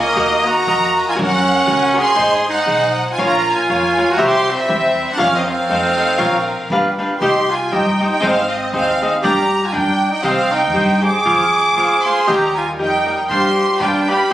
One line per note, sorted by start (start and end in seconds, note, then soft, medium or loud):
0.00 0.15 A#3 medium
0.00 0.47 A#3 medium
0.00 0.16 G#4 medium
0.00 0.16 C#5 medium
0.00 0.47 D#5 medium
0.16 0.49 D#2 medium
0.16 2.16 A#3 medium
0.16 0.33 F#4 medium
0.16 2.16 F#4 medium
0.16 0.33 A#4 medium
0.16 0.33 D#5 medium
0.16 1.17 D#5 medium
0.16 0.34 F#5 medium
0.45 1.07 F#4 medium
0.45 1.07 A#5 loud
0.66 1.00 F2 medium
0.66 0.84 F#4 soft
0.66 0.84 A#4 medium
0.66 0.84 D#5 medium
0.66 0.84 F#5 medium
1.08 1.13 F4 medium
1.08 1.13 G#5 medium
1.15 1.51 F#2 loud
1.15 1.33 F#4 medium
1.15 1.33 A#4 medium
1.15 1.33 C#5 medium
1.15 2.16 C#5 medium
1.15 1.34 F#5 medium
1.22 2.00 C#4 medium
1.22 1.93 F#5 loud
1.67 2.00 C#2 medium
1.67 1.84 F#4 medium
1.67 1.84 A#4 medium
1.67 1.84 C#5 medium
1.67 1.84 F#5 medium
1.93 2.08 F#4 soft
1.93 2.08 A#4 medium
1.93 2.09 C#5 medium
1.93 2.08 F#5 medium
1.99 2.47 G#4 loud
1.99 2.48 C6 loud
2.16 2.51 G#2 medium
2.16 3.19 G#3 medium
2.16 2.33 D#4 medium
2.16 3.19 D#4 medium
2.16 2.33 G#4 medium
2.16 2.34 C5 medium
2.16 3.19 C5 medium
2.16 2.34 D#5 medium
2.49 3.05 D#4 medium
2.49 3.07 F#5 loud
2.66 3.01 B1 medium
2.66 2.84 D#4 medium
2.66 2.84 G#4 medium
2.66 2.85 C5 medium
2.66 2.85 D#5 medium
3.12 3.21 F4 medium
3.12 3.21 G#5 medium
3.18 3.52 A#1 medium
3.18 4.19 A#3 medium
3.18 3.36 F4 medium
3.18 4.19 F4 medium
3.18 3.36 A#4 medium
3.18 4.19 C#5 medium
3.18 3.36 C#5 medium
3.18 3.37 F5 medium
3.25 3.52 F4 medium
3.25 3.49 A#5 loud
3.52 4.13 F4 medium
3.52 4.12 G#5 medium
3.69 4.03 F2 medium
3.69 3.86 F4 soft
3.69 3.87 A#4 medium
3.69 3.87 C#5 medium
3.69 3.87 F5 medium
3.97 4.11 F4 medium
3.97 4.12 A#4 soft
3.97 4.12 C#5 soft
3.97 4.12 F5 medium
4.11 4.26 F#4 medium
4.11 4.23 A#5 medium
4.17 4.52 C2 medium
4.17 4.35 E4 medium
4.17 4.36 G4 medium
4.17 4.36 C5 medium
4.17 4.36 E5 medium
4.21 5.20 G3 medium
4.21 5.20 E4 medium
4.21 4.52 G4 medium
4.21 5.20 C5 medium
4.25 4.51 C6 loud
4.51 5.11 C4 medium
4.51 5.13 E5 medium
4.68 5.02 E2 medium
4.68 4.86 E4 medium
4.68 4.86 G4 medium
4.68 4.86 C5 medium
4.68 4.86 E5 medium
5.11 5.24 D4 medium
5.11 5.21 F#5 medium
5.17 5.53 F2 loud
5.17 5.70 A#3 medium
5.17 5.36 F4 medium
5.17 7.20 F4 medium
5.17 5.36 A#4 medium
5.17 5.36 C#5 medium
5.17 5.70 C#5 medium
5.17 5.36 F5 loud
5.21 5.36 C#4 medium
5.21 5.35 F5 loud
5.34 5.47 C4 medium
5.34 5.49 D#5 medium
5.47 6.67 C4 medium
5.47 6.67 F5 medium
5.69 6.03 F2 medium
5.69 6.20 A3 medium
5.69 5.87 D#4 medium
5.69 5.86 A4 medium
5.69 5.87 C5 medium
5.69 6.20 D#5 medium
5.69 5.88 F5 medium
5.97 6.11 D#4 medium
5.97 6.11 A4 medium
5.97 6.12 C5 medium
5.97 6.12 F5 medium
6.18 6.53 A#1 medium
6.18 6.70 A#3 medium
6.18 6.36 F4 loud
6.18 6.70 A#4 medium
6.18 6.37 A#4 medium
6.18 6.36 C#5 medium
6.18 6.37 F5 loud
6.70 7.04 G1 medium
6.70 7.22 G3 medium
6.70 6.88 D4 medium
6.70 6.88 G4 medium
6.70 6.88 B4 medium
6.70 7.23 B4 medium
6.70 6.89 F5 medium
6.99 7.13 D4 medium
6.99 7.13 G4 medium
6.99 7.13 B4 medium
6.99 7.14 F5 medium
7.21 7.74 C2 medium
7.21 7.39 D#4 medium
7.21 7.51 G4 medium
7.21 7.39 G4 medium
7.21 7.39 C5 medium
7.21 7.39 D#5 medium
7.21 7.48 C6 medium
7.50 7.75 F4 medium
7.50 7.73 G#5 medium
7.71 8.05 G2 medium
7.71 7.89 D#4 soft
7.71 8.10 D#4 medium
7.71 7.89 G4 medium
7.71 7.89 C5 medium
7.71 7.90 D#5 medium
7.71 8.10 G5 medium
8.00 8.14 D#4 soft
8.00 8.15 G4 soft
8.00 8.15 C5 medium
8.00 8.15 D#5 medium
8.10 8.24 D#4 medium
8.10 8.22 G5 medium
8.21 8.75 G#1 medium
8.21 8.49 C4 medium
8.21 8.39 D#4 medium
8.21 8.39 G#4 medium
8.21 8.39 C5 medium
8.21 8.39 D#5 medium
8.21 8.51 F5 medium
8.49 8.72 C4 medium
8.49 8.73 D#5 medium
8.72 9.06 D#2 medium
8.72 9.09 C4 medium
8.72 8.90 D#4 medium
8.72 8.90 G#4 medium
8.72 8.90 C5 medium
8.72 8.91 D#5 medium
8.72 9.09 F5 medium
9.02 9.15 D#4 soft
9.02 9.15 G#4 soft
9.02 9.15 C5 soft
9.02 9.16 D#5 medium
9.22 9.75 G1 loud
9.22 9.40 D4 medium
9.22 9.67 G4 medium
9.22 9.41 A#4 medium
9.22 9.41 D5 medium
9.22 9.41 G5 medium
9.22 9.64 A#5 loud
9.66 9.75 F4 medium
9.66 9.73 G#5 medium
9.72 10.07 G2 medium
9.72 9.90 D4 medium
9.72 10.10 D4 medium
9.72 9.90 A#4 medium
9.72 9.90 D5 medium
9.72 10.11 G5 loud
9.72 9.91 G5 medium
10.11 10.24 D#4 medium
10.11 10.23 G5 medium
10.23 10.74 C2 medium
10.23 10.53 C4 medium
10.23 10.40 G4 medium
10.23 10.41 C5 medium
10.23 10.41 D#5 medium
10.23 10.52 F5 medium
10.23 10.41 G5 medium
10.52 11.02 D#4 medium
10.52 11.04 G5 medium
10.73 11.08 G2 medium
10.73 10.91 G4 medium
10.73 10.92 C5 medium
10.73 10.92 D#5 medium
10.73 10.92 G5 medium
11.02 11.16 G4 soft
11.02 12.05 G#4 medium
11.02 11.17 C5 soft
11.02 11.17 D#5 soft
11.02 11.17 G5 medium
11.02 12.02 D6 loud
11.25 11.78 F2 medium
11.25 12.28 G#3 medium
11.25 11.43 F4 medium
11.25 12.28 F4 medium
11.25 11.44 C5 medium
11.25 12.28 C5 medium
11.25 11.43 F5 medium
11.25 11.43 G#5 medium
11.77 12.11 A#1 medium
11.77 11.94 F4 medium
11.77 11.94 C5 medium
11.77 11.95 F5 medium
11.77 11.95 G#5 medium
12.03 12.19 F4 soft
12.03 12.30 G#4 medium
12.03 12.20 C5 soft
12.03 12.20 F5 medium
12.03 12.20 G#5 medium
12.03 12.28 C6 loud
12.27 12.80 D#2 medium
12.27 14.33 G3 medium
12.27 13.30 D#4 medium
12.27 12.45 G4 medium
12.27 12.57 G4 medium
12.27 12.45 A#4 medium
12.27 12.45 D#5 medium
12.27 12.45 G5 medium
12.27 12.57 A#5 medium
12.31 13.30 A#4 medium
12.55 12.67 F4 medium
12.55 12.66 G#5 medium
12.79 13.12 F2 medium
12.79 13.17 D#4 medium
12.79 12.96 G4 medium
12.79 12.96 A#4 soft
12.79 12.97 D#5 medium
12.79 12.97 G5 medium
12.79 13.17 G5 medium
13.06 13.20 G4 medium
13.06 13.21 A#4 medium
13.06 13.20 D#5 soft
13.06 13.21 G5 medium
13.30 13.62 G2 medium
13.30 13.47 D4 medium
13.30 14.30 F4 medium
13.30 13.83 G4 medium
13.30 13.47 C5 medium
13.30 13.81 C5 medium
13.30 13.47 F5 medium
13.30 13.47 G5 medium
13.30 13.77 C6 loud
13.80 14.13 G2 medium
13.80 13.98 D4 soft
13.80 14.11 D4 medium
13.80 14.30 B4 medium
13.80 13.98 B4 soft
13.80 13.98 F5 medium
13.80 14.08 G5 medium
13.80 13.99 G5 medium
14.08 14.23 D4 soft
14.08 14.33 G4 medium
14.08 14.22 B4 soft
14.08 14.23 F5 medium
14.08 14.23 G5 medium
14.08 14.31 B5 medium
14.29 14.33 D#4 medium
14.29 14.33 C5 medium